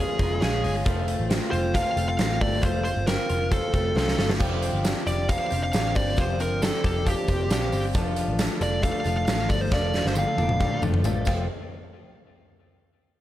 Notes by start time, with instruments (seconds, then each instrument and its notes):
Already playing: twelve-string acoustic guitar F3 G#3 C#4 F4, clean electric guitar G#3 F4
0.00 lead electric guitar G#4
0.18 picked electric bass F1, twelve-string acoustic guitar G#3 C#4 F4, kick, closed hi-hat
0.40 picked electric bass A#1, twelve-string acoustic guitar F3 G#3 C#4 F4, lead electric guitar G#4, snare, closed hi-hat
0.63 picked electric bass G1, clean electric guitar G#3, open hi-hat
0.84 picked electric bass F1, twelve-string acoustic guitar F3 A3 C4 F4, kick, closed hi-hat
1.08 clean electric guitar A3, closed hi-hat
1.20 picked electric bass A1
1.30 clean electric guitar C4, snare, closed hi-hat
1.51 picked electric bass F1, clean electric guitar F4, lead electric guitar C5, closed hi-hat
1.74 twelve-string acoustic guitar F3 A3 C4 F4, lead electric guitar F5, kick, snare, closed hi-hat
1.96 picked electric bass F1, twelve-string acoustic guitar A3 C4 F4, closed hi-hat
2.09 lead electric guitar F5
2.18 picked electric bass A1, twelve-string acoustic guitar F3 A3 C4 F4, snare, closed hi-hat
2.41 picked electric bass G1, clean electric guitar A3, lead electric guitar D5, kick, open hi-hat
2.62 picked electric bass F1, twelve-string acoustic guitar F3 C4 F4, clean electric guitar A3, lead electric guitar C5, kick, closed hi-hat
2.84 lead electric guitar C5, closed hi-hat
2.97 picked electric bass G1
3.07 clean electric guitar C4, lead electric guitar A#4, snare, closed hi-hat
3.29 picked electric bass F1, clean electric guitar F4, closed hi-hat
3.51 twelve-string acoustic guitar F3 A3 C4 F4, lead electric guitar A4, kick, closed hi-hat
3.73 picked electric bass F1, twelve-string acoustic guitar A3 C4 F4, kick, closed hi-hat
3.94 picked electric bass C2, twelve-string acoustic guitar F3 A3 C4 F4, lead electric guitar A4, snare
4.08 snare
4.17 picked electric bass G1, twelve-string acoustic guitar A3 C4 F4, snare
4.29 snare
4.38 picked electric bass F1, twelve-string acoustic guitar F3 C4 D4 G4, kick, crash, tambourine
4.62 clean electric guitar C4, closed hi-hat, tambourine
4.73 picked electric bass G1
4.84 clean electric guitar D4, snare, closed hi-hat, tambourine
5.06 picked electric bass F1, clean electric guitar G4, lead electric guitar D5, closed hi-hat, tambourine
5.29 twelve-string acoustic guitar F3 C4 D4 G4, lead electric guitar F5, kick, snare, closed hi-hat, tambourine
5.40 clean electric guitar D4
5.50 picked electric bass F1, twelve-string acoustic guitar C4 D4 G4, closed hi-hat, tambourine
5.63 lead electric guitar F5
5.72 picked electric bass A1, twelve-string acoustic guitar F3 C4 D4 G4, snare, closed hi-hat, tambourine
5.95 picked electric bass G1, clean electric guitar C4, lead electric guitar D5, kick, open hi-hat, tambourine
6.17 picked electric bass F1, twelve-string acoustic guitar F3 C4 D4 G4, lead electric guitar C5, kick, closed hi-hat, tambourine
6.39 twelve-string acoustic guitar C4 D4 G4, lead electric guitar A#4, closed hi-hat, tambourine
6.51 picked electric bass G1
6.62 clean electric guitar D4, lead electric guitar A4, snare, closed hi-hat, tambourine
6.84 picked electric bass F1, clean electric guitar G4, lead electric guitar A4, kick, closed hi-hat, tambourine
7.06 twelve-string acoustic guitar F3 C4 D4 G4, lead electric guitar G4, kick, closed hi-hat, tambourine
7.28 picked electric bass F1, twelve-string acoustic guitar C4 D4 G4, kick, closed hi-hat, tambourine
7.50 picked electric bass A#1, twelve-string acoustic guitar F3 C4 D4 G4, lead electric guitar G4, snare, closed hi-hat, tambourine
7.72 picked electric bass G1, clean electric guitar C4, open hi-hat, tambourine
7.93 picked electric bass F1, twelve-string acoustic guitar F3 A3 D4 A4, kick, closed hi-hat, tambourine
8.16 clean electric guitar F3, closed hi-hat, tambourine
8.28 picked electric bass A1
8.39 clean electric guitar A3, snare, closed hi-hat, tambourine
8.61 picked electric bass F1, clean electric guitar D4, lead electric guitar D5, closed hi-hat, tambourine
8.82 twelve-string acoustic guitar F3 A3 D4 A4, lead electric guitar F5, kick, closed hi-hat, tambourine
9.03 picked electric bass F1, clean electric guitar F3, twelve-string acoustic guitar A3 D4 A4, closed hi-hat, tambourine
9.17 lead electric guitar F5
9.26 picked electric bass A1, twelve-string acoustic guitar F3 A3 D4 A4, snare, closed hi-hat, tambourine
9.49 picked electric bass G1, clean electric guitar F3, twelve-string acoustic guitar A3 D4 A4, lead electric guitar D5, kick, open hi-hat, tambourine
9.61 lead electric guitar C5
9.71 picked electric bass F1, twelve-string acoustic guitar F3 A3 D4 A4, lead electric guitar D5, kick, snare, tambourine
9.93 clean electric guitar F3, snare, tambourine
10.05 picked electric bass G1, lead electric guitar C5, snare
10.15 clean electric guitar G3, lead electric guitar F5, high tom, tambourine
10.28 clean electric guitar A3
10.38 picked electric bass F1, clean electric guitar D4, high tom, tambourine
10.49 mid tom
10.60 twelve-string acoustic guitar F3 A3 D4 A4, clean electric guitar G3, kick, mid tom, tambourine
10.72 clean electric guitar A3
10.82 picked electric bass F1, clean electric guitar F3, twelve-string acoustic guitar A3 D4 A4, mid tom, tambourine
10.94 mid tom
11.04 picked electric bass A1, twelve-string acoustic guitar F3 A3 D4 A4, mid tom, tambourine
11.25 picked electric bass F1, twelve-string acoustic guitar F3 A3 C4 F4 A4, kick, crash, tambourine